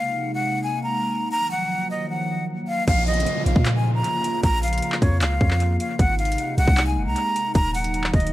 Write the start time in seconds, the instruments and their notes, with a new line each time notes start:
Already playing: analog synth pad C3 G#3 A#3 D#4, flute F5
0.34 flute F#5
0.63 flute G#5
0.83 flute A#5
1.31 analog synth pad D#3 F3 F#3, flute A#5
1.51 flute F#5
1.91 flute D#5
2.10 flute F#5
2.68 flute F5
2.88 808-style bass A#1, analog synth pad C#3 F3 A#3 F4, flute F5, kick, closed hi-hat, crash, downlifter
3.07 flute D#5, closed hi-hat
3.14 closed hi-hat
3.20 closed hi-hat
3.26 closed hi-hat
3.46 808-style bass A#1, flute F5, closed hi-hat
3.56 808-style bass A#2, kick
3.65 clap, closed hi-hat
3.75 flute G#5
3.95 flute A#5
4.04 closed hi-hat
4.24 closed hi-hat
4.43 808-style bass A#1, flute A#5, kick, closed hi-hat
4.63 flute F5, closed hi-hat, open hi-hat
4.68 closed hi-hat
4.73 closed hi-hat
4.78 closed hi-hat
4.82 closed hi-hat
4.92 clap
5.01 808-style bass F2, flute C#5, kick, closed hi-hat
5.21 808-style bass C#2, flute F5, clap, closed hi-hat
5.41 808-style bass F2, kick
5.51 clap
5.60 closed hi-hat
5.80 flute F5, closed hi-hat
5.99 808-style bass G#1, analog synth pad C3 G#3 D#4, flute F#5, kick, closed hi-hat
6.19 flute F5, closed hi-hat
6.25 closed hi-hat
6.32 closed hi-hat
6.38 closed hi-hat
6.57 808-style bass C2, flute F#5, closed hi-hat
6.67 808-style bass C2, kick
6.77 clap, closed hi-hat
6.87 flute G#5
6.97 808-style bass F#1
7.06 808-style bass C2, flute A#5
7.16 closed hi-hat
7.36 closed hi-hat
7.55 808-style bass D#1, analog synth pad D#3 F#3 A#3 D#4, flute A#5, kick, closed hi-hat
7.75 flute F#5, closed hi-hat, open hi-hat
7.84 closed hi-hat
7.94 closed hi-hat
8.04 clap
8.14 808-style bass D#1, flute D#5, kick, closed hi-hat
8.20 closed hi-hat
8.27 closed hi-hat